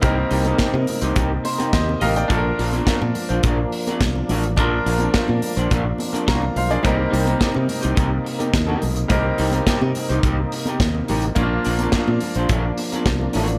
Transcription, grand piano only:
\new Staff \with { instrumentName = "Grand piano" } { \time 4/4 \key c \minor \tempo 4 = 106 << { r2 r8 c''8 <g' c'' ees''>8 <bes' ees'' f''>16 <d'' g''>16~ | <d'' g''>16 r2. r8. | r2. <f'' bes''>8 <c'' f''>16 <aes' d''>16~ | <aes' d''>16 r2. r8. |
r1 | r1 | } \\ { <g bes c' ees' bes'>2. r4 | <d' f' a' bes'>1 | <d' f' bes'>1 | <g bes c' ees' bes'>1 |
<g bes c' ees' bes'>1 | <bes des' d' f'>1 | } >> }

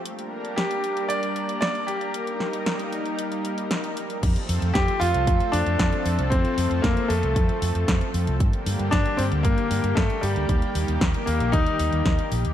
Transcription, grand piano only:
\new Staff \with { instrumentName = "Grand piano" } { \time 4/4 \key f \mixolydian \tempo 4 = 115 r4 g'4 d''4 d''8 g'8~ | g'2. r4 | r4 g'8 f'4 d'4. | c'4 bes8 a2 r8 |
r4 d'8 c'8 bes4 a8 g8~ | g4 r8 bes8 ees'4. r8 | }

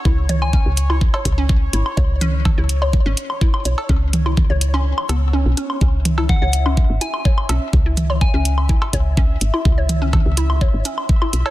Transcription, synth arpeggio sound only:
\new Staff \with { instrumentName = "Synth arpeggio sound" } { \time 4/4 \key cis \minor \tempo 4 = 125 e'16 r16 cis''16 r16 cis'16 r8 e'16 r16 cis''16 r16 cis'16 r8 e'16 r16 | cis''16 r16 cis'16 r8 e'16 r16 cis''16 r16 cis'16 r8 e'16 r16 cis''16 r16 | cis'16 r8 e'16 r16 cis''16 r16 cis'16 r8 b16 r16 cis'16 r16 cis'16 r16 | cis'16 r8 e'16 r16 cis''16 r16 cis'16 r8 e'16 r16 cis''16 r16 cis'16 r16 |
r16 e'16 r16 cis''16 r16 cis'16 r8 e'16 r16 cis''16 r16 cis'16 r8 e'16 | r16 cis''16 r16 cis'16 r8 e'16 r16 cis''16 r16 cis'16 r8 e'16 r16 cis''16 | }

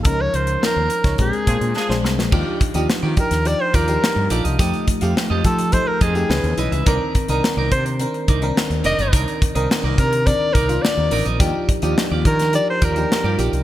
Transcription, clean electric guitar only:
\new Staff \with { instrumentName = "Clean electric guitar" } { \time 4/4 \key bes \dorian \tempo 4 = 106 r1 | \key ees \lydian <f' g' d''>8 r16 <f' g' ees''>16 r16 <f' g' d''>16 r4 <f' g' d''>16 r8. <f' g' d''>16 <f' g' ees''>16 | <g' a' ees''>8 r16 <g' a' f''>16 r16 <g' a' ees''>16 r4 <g' a' ees''>16 r8. <fes' ces'' ees''>16 <fes' ces'' fes''>16 | <ees' bes' d''>8 r16 <ees' bes' ees''>16 r16 <ees' bes' d''>16 r4 <ees' bes' d''>16 r8. <ees' bes' d''>16 <ees' bes' ees''>16 |
<ees' bes' d''>8 r16 <ees' bes' ees''>16 r16 <ees' bes' d''>16 r4 <ees' bes' d''>16 r8. <ees' bes' d''>16 <ees' bes' ees''>16 | <f' g' d''>8 r16 <f' g' ees''>16 r16 <f' g' d''>16 r4 <f' g' d''>16 r8 <f' g' d''>16 <f' g' d''>16 r16 | }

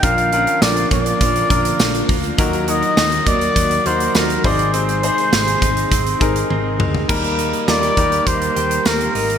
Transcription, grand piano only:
\new Staff \with { instrumentName = "Grand piano" } { \time 4/4 \key ees \major \tempo 4 = 102 <d' f' bes'>8 <des' d' f' bes'>2 <d' f' bes'>4. | <ees' ges' bes'>8 <ees' ges' bes'>2 <ees' ges' bes'>4 <ees' aes' c''>8~ | <ees' aes' c''>8 <ees' aes' c''>2 <ees' aes' bes'>4. | <g bes ees' bes'>4 <g bes ees' bes'>8 <g bes ees' bes'>2 r8 | }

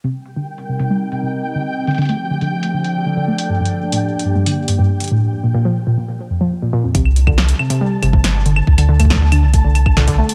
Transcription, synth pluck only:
\new Staff \with { instrumentName = "Synth pluck" } { \clef bass \time 4/4 \key c \dorian \tempo 4 = 139 c16 r8 d16 r8 c16 c16 g16 r16 c16 c16 r8 d16 r16 | r16 d16 d16 a16 r16 d16 d16 r8 d16 r8 d16 d16 a16 r16 | g,16 g,16 r8 a,16 r8 g,16 g,16 d16 r16 g,16 g,16 r8 a,16 | r8 bes,16 bes,16 f16 r16 bes,16 bes,16 r8 f,16 f16 r16 bes,16 bes,16 f,16 |
c16 r8 d16 r8 c16 c16 g16 r16 c16 c16 r8 d16 r16 | r16 d16 d16 a16 r16 d16 d16 r8 d16 r8 d16 d16 a16 r16 | }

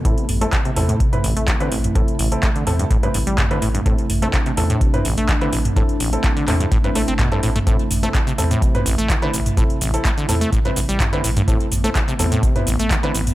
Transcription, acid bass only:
\new Staff \with { instrumentName = "Acid bass" } { \clef bass \time 4/4 \key a \minor \tempo 4 = 126 a,16 r8 a16 c16 c16 a,,16 a,16 c16 b,16 a,,16 a16 d16 d16 a,,16 r16 | a,16 r16 a,,16 r16 a16 d16 a,16 g,16 a,16 g,16 g,16 g16 b,16 d16 a,16 g,16 | a,16 r8 a16 c16 c16 a,,16 a,16 c16 b,16 a,,16 a16 d16 d16 a,,16 r16 | a,16 r16 a,,16 r16 a16 d16 a,16 g,16 a,16 g,16 a16 c'16 b,16 g,16 a,16 a16 |
a,16 r8 a16 c16 c16 a,,16 a,16 c16 b,16 a,,16 a16 d16 d16 a,,16 r16 | a,16 r16 a,,16 r16 a16 d16 a,16 a16 a,16 g,16 g,16 g16 b,16 d16 a,16 g,16 | a,16 r8 a16 c16 c16 a,,16 a,16 c16 b,16 a,,16 a16 d16 d16 a,,16 r16 | }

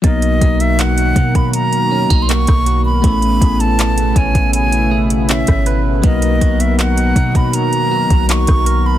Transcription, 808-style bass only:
\new Staff \with { instrumentName = "808-style bass" } { \clef bass \time 4/4 \key b \major \tempo 4 = 80 b,,8 b,,4 b,4~ b,16 b,,8 b,,8. | a,,8 a,,4 a,,4.~ a,,16 gis,,8. | b,,8 b,,4 b,4~ b,16 b,,8 b,,8. | }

